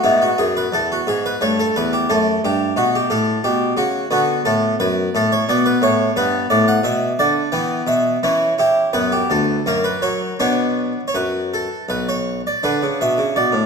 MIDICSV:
0, 0, Header, 1, 2, 480
1, 0, Start_track
1, 0, Tempo, 683371
1, 18, Time_signature, 3, 2, 24, 8
1, 5778, Tempo, 708383
1, 6738, Tempo, 745342
1, 8658, Tempo, 705882
1, 9362, End_track
2, 0, Start_track
2, 0, Title_t, "Harpsichord"
2, 0, Program_c, 0, 6
2, 25, Note_on_c, 0, 59, 31
2, 26, Note_on_c, 0, 44, 44
2, 26, Note_on_c, 0, 64, 61
2, 143, Note_off_c, 0, 64, 0
2, 152, Note_on_c, 0, 66, 52
2, 217, Note_off_c, 0, 44, 0
2, 267, Note_off_c, 0, 66, 0
2, 268, Note_on_c, 0, 68, 67
2, 270, Note_on_c, 0, 42, 43
2, 386, Note_off_c, 0, 68, 0
2, 399, Note_on_c, 0, 71, 62
2, 462, Note_off_c, 0, 42, 0
2, 509, Note_on_c, 0, 40, 44
2, 513, Note_off_c, 0, 71, 0
2, 517, Note_on_c, 0, 69, 71
2, 633, Note_off_c, 0, 69, 0
2, 645, Note_on_c, 0, 66, 56
2, 702, Note_off_c, 0, 40, 0
2, 753, Note_on_c, 0, 44, 40
2, 758, Note_off_c, 0, 66, 0
2, 758, Note_on_c, 0, 68, 63
2, 875, Note_off_c, 0, 68, 0
2, 883, Note_on_c, 0, 71, 61
2, 945, Note_off_c, 0, 44, 0
2, 965, Note_off_c, 0, 59, 0
2, 991, Note_on_c, 0, 43, 46
2, 994, Note_on_c, 0, 57, 34
2, 996, Note_on_c, 0, 73, 72
2, 997, Note_off_c, 0, 71, 0
2, 1114, Note_off_c, 0, 73, 0
2, 1121, Note_on_c, 0, 69, 62
2, 1184, Note_off_c, 0, 43, 0
2, 1237, Note_off_c, 0, 69, 0
2, 1238, Note_on_c, 0, 71, 66
2, 1240, Note_on_c, 0, 40, 45
2, 1356, Note_off_c, 0, 71, 0
2, 1356, Note_on_c, 0, 67, 64
2, 1430, Note_off_c, 0, 40, 0
2, 1447, Note_off_c, 0, 57, 0
2, 1472, Note_on_c, 0, 57, 34
2, 1473, Note_on_c, 0, 42, 48
2, 1475, Note_off_c, 0, 67, 0
2, 1475, Note_on_c, 0, 69, 68
2, 1665, Note_off_c, 0, 42, 0
2, 1678, Note_off_c, 0, 69, 0
2, 1717, Note_on_c, 0, 43, 46
2, 1719, Note_on_c, 0, 67, 66
2, 1905, Note_off_c, 0, 43, 0
2, 1918, Note_off_c, 0, 67, 0
2, 1942, Note_on_c, 0, 47, 51
2, 1945, Note_on_c, 0, 66, 74
2, 2065, Note_off_c, 0, 66, 0
2, 2075, Note_on_c, 0, 67, 68
2, 2133, Note_off_c, 0, 47, 0
2, 2178, Note_on_c, 0, 45, 42
2, 2182, Note_on_c, 0, 69, 63
2, 2189, Note_off_c, 0, 67, 0
2, 2368, Note_off_c, 0, 45, 0
2, 2418, Note_off_c, 0, 69, 0
2, 2418, Note_on_c, 0, 67, 70
2, 2419, Note_on_c, 0, 47, 53
2, 2608, Note_off_c, 0, 47, 0
2, 2619, Note_off_c, 0, 67, 0
2, 2646, Note_on_c, 0, 49, 51
2, 2649, Note_on_c, 0, 66, 73
2, 2840, Note_off_c, 0, 49, 0
2, 2853, Note_off_c, 0, 66, 0
2, 2863, Note_off_c, 0, 57, 0
2, 2885, Note_on_c, 0, 59, 35
2, 2886, Note_on_c, 0, 50, 52
2, 2892, Note_on_c, 0, 66, 78
2, 3078, Note_off_c, 0, 50, 0
2, 3094, Note_off_c, 0, 66, 0
2, 3128, Note_on_c, 0, 69, 77
2, 3131, Note_on_c, 0, 45, 49
2, 3322, Note_off_c, 0, 45, 0
2, 3332, Note_off_c, 0, 69, 0
2, 3371, Note_on_c, 0, 42, 55
2, 3372, Note_on_c, 0, 71, 69
2, 3564, Note_off_c, 0, 42, 0
2, 3612, Note_off_c, 0, 71, 0
2, 3615, Note_on_c, 0, 45, 52
2, 3621, Note_on_c, 0, 69, 78
2, 3736, Note_off_c, 0, 69, 0
2, 3739, Note_on_c, 0, 73, 77
2, 3806, Note_off_c, 0, 45, 0
2, 3819, Note_off_c, 0, 59, 0
2, 3855, Note_off_c, 0, 73, 0
2, 3855, Note_on_c, 0, 47, 51
2, 3857, Note_on_c, 0, 59, 38
2, 3858, Note_on_c, 0, 74, 88
2, 3974, Note_off_c, 0, 74, 0
2, 3974, Note_on_c, 0, 71, 73
2, 4044, Note_off_c, 0, 47, 0
2, 4088, Note_on_c, 0, 45, 55
2, 4091, Note_off_c, 0, 71, 0
2, 4094, Note_on_c, 0, 73, 86
2, 4278, Note_off_c, 0, 45, 0
2, 4302, Note_off_c, 0, 59, 0
2, 4329, Note_off_c, 0, 73, 0
2, 4329, Note_on_c, 0, 43, 55
2, 4333, Note_on_c, 0, 71, 86
2, 4334, Note_on_c, 0, 59, 37
2, 4519, Note_off_c, 0, 43, 0
2, 4533, Note_off_c, 0, 71, 0
2, 4567, Note_on_c, 0, 74, 83
2, 4569, Note_on_c, 0, 45, 57
2, 4686, Note_off_c, 0, 74, 0
2, 4691, Note_on_c, 0, 78, 87
2, 4759, Note_off_c, 0, 45, 0
2, 4801, Note_on_c, 0, 47, 58
2, 4807, Note_on_c, 0, 76, 84
2, 4808, Note_off_c, 0, 78, 0
2, 4995, Note_off_c, 0, 47, 0
2, 5047, Note_off_c, 0, 76, 0
2, 5052, Note_on_c, 0, 50, 51
2, 5052, Note_on_c, 0, 74, 79
2, 5244, Note_off_c, 0, 50, 0
2, 5264, Note_off_c, 0, 59, 0
2, 5283, Note_on_c, 0, 79, 96
2, 5284, Note_on_c, 0, 52, 52
2, 5289, Note_on_c, 0, 59, 38
2, 5291, Note_off_c, 0, 74, 0
2, 5481, Note_off_c, 0, 52, 0
2, 5492, Note_off_c, 0, 79, 0
2, 5525, Note_on_c, 0, 47, 52
2, 5530, Note_on_c, 0, 76, 86
2, 5725, Note_off_c, 0, 47, 0
2, 5741, Note_off_c, 0, 76, 0
2, 5751, Note_off_c, 0, 59, 0
2, 5782, Note_on_c, 0, 52, 55
2, 5783, Note_on_c, 0, 64, 75
2, 5786, Note_on_c, 0, 61, 39
2, 5972, Note_off_c, 0, 52, 0
2, 5985, Note_off_c, 0, 64, 0
2, 6021, Note_on_c, 0, 64, 52
2, 6027, Note_on_c, 0, 67, 76
2, 6211, Note_off_c, 0, 64, 0
2, 6233, Note_off_c, 0, 61, 0
2, 6257, Note_on_c, 0, 42, 52
2, 6258, Note_on_c, 0, 59, 39
2, 6258, Note_on_c, 0, 71, 82
2, 6261, Note_off_c, 0, 67, 0
2, 6377, Note_off_c, 0, 71, 0
2, 6385, Note_on_c, 0, 67, 68
2, 6448, Note_off_c, 0, 42, 0
2, 6500, Note_off_c, 0, 67, 0
2, 6504, Note_on_c, 0, 38, 45
2, 6510, Note_on_c, 0, 69, 69
2, 6695, Note_off_c, 0, 38, 0
2, 6712, Note_off_c, 0, 59, 0
2, 6745, Note_off_c, 0, 69, 0
2, 6751, Note_on_c, 0, 42, 44
2, 6753, Note_on_c, 0, 58, 34
2, 6757, Note_on_c, 0, 70, 78
2, 6865, Note_off_c, 0, 70, 0
2, 6866, Note_on_c, 0, 71, 70
2, 6935, Note_off_c, 0, 42, 0
2, 6980, Note_off_c, 0, 71, 0
2, 6982, Note_on_c, 0, 54, 43
2, 6984, Note_on_c, 0, 73, 70
2, 7174, Note_off_c, 0, 54, 0
2, 7199, Note_off_c, 0, 58, 0
2, 7217, Note_off_c, 0, 73, 0
2, 7223, Note_on_c, 0, 62, 31
2, 7224, Note_on_c, 0, 47, 39
2, 7225, Note_on_c, 0, 73, 78
2, 7227, Note_on_c, 0, 59, 31
2, 7563, Note_off_c, 0, 47, 0
2, 7610, Note_off_c, 0, 62, 0
2, 7612, Note_off_c, 0, 59, 0
2, 7654, Note_off_c, 0, 73, 0
2, 7662, Note_on_c, 0, 73, 39
2, 7705, Note_on_c, 0, 42, 40
2, 7707, Note_off_c, 0, 73, 0
2, 7707, Note_on_c, 0, 71, 51
2, 7958, Note_on_c, 0, 69, 57
2, 8040, Note_off_c, 0, 42, 0
2, 8155, Note_off_c, 0, 69, 0
2, 8181, Note_off_c, 0, 71, 0
2, 8183, Note_on_c, 0, 35, 37
2, 8189, Note_on_c, 0, 71, 53
2, 8306, Note_off_c, 0, 71, 0
2, 8312, Note_on_c, 0, 73, 62
2, 8512, Note_off_c, 0, 73, 0
2, 8516, Note_off_c, 0, 35, 0
2, 8558, Note_on_c, 0, 74, 62
2, 8663, Note_on_c, 0, 62, 33
2, 8668, Note_off_c, 0, 74, 0
2, 8668, Note_on_c, 0, 50, 50
2, 8668, Note_on_c, 0, 71, 68
2, 8779, Note_off_c, 0, 50, 0
2, 8794, Note_on_c, 0, 49, 45
2, 8903, Note_off_c, 0, 49, 0
2, 8907, Note_off_c, 0, 71, 0
2, 8921, Note_on_c, 0, 47, 49
2, 8923, Note_on_c, 0, 76, 72
2, 9027, Note_off_c, 0, 47, 0
2, 9037, Note_on_c, 0, 49, 49
2, 9144, Note_off_c, 0, 49, 0
2, 9153, Note_off_c, 0, 76, 0
2, 9160, Note_on_c, 0, 47, 47
2, 9160, Note_on_c, 0, 74, 62
2, 9264, Note_off_c, 0, 47, 0
2, 9271, Note_on_c, 0, 45, 47
2, 9362, Note_off_c, 0, 45, 0
2, 9362, Note_off_c, 0, 62, 0
2, 9362, Note_off_c, 0, 74, 0
2, 9362, End_track
0, 0, End_of_file